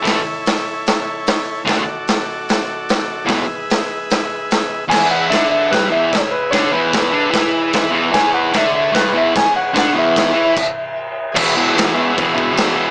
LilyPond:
<<
  \new Staff \with { instrumentName = "Electric slide guitar" } { \time 4/4 \key e \mixolydian \tempo 4 = 148 r1 | r1 | r1 | \key e \major gis''8 fis''8 e''8 e''8 b'8 e''8 cis''8 b'8 |
cis''8 b'2. r8 | gis''8 fis''8 e''8 e''8 b'8 e''8 gis''8 fis''8 | fis''8 e''2. r8 | r1 | }
  \new Staff \with { instrumentName = "Transistor combo organ" } { \time 4/4 \key e \mixolydian <e' a' cis''>1 | <fis' a' d''>1 | <gis' b' e''>1 | \key e \major <gis' b' e''>1~ |
<gis' b' e''>1 | <gis' b' cis''>1~ | <gis' b' cis''>2 r2 | <gis' b' e''>1 | }
  \new Staff \with { instrumentName = "Distorted electric guitar" } { \clef bass \time 4/4 \key e \mixolydian <a, e a>8 r2. r8 | <d a d'>8 r2. r8 | <e, b, e>8 r2. r8 | \key e \major <e, e>4 <d d'>4 <g, g>8 <e, e>8 r4 |
<d d'>8 <e, e>4 <d d'>8 <e e'>4. <e, e>8 | <e, e>4 <d d'>4 <g, g>8 <e, e>8 r4 | <d d'>8 <e, e>4 <e e'>8 r2 | <e, b, e>8 <e, b, e>8 <e, b, e>8 <e, b, e>8 <e, b, e>8 <e, b, e>8 <e, b, e>8 <e, b, e>8 | }
  \new DrumStaff \with { instrumentName = "Drums" } \drummode { \time 4/4 <hho bd sn>4 <hho sn>4 <hho sn>4 <hho sn>4 | <hho bd sn>4 <hho sn>4 <hho sn>4 <hho sn>4 | <hho bd sn>4 <hho sn>4 <hho sn>4 <hho sn>4 | <cymc bd sn>4 <cymc bd sn>4 <cymc bd sn>4 <cymc bd sn>4 |
<cymc bd sn>4 <cymc bd sn>4 <cymc bd sn>4 <cymc bd sn>4 | <cymc bd sn>4 <cymc bd sn>4 <cymc bd sn>4 <cymc bd sn>4 | <cymc bd sn>4 <cymc bd sn>4 <cymc bd>4 r4 | <cymc bd>4 <cymc sn>4 <cymc bd>8 bd8 <cymc sn>4 | }
>>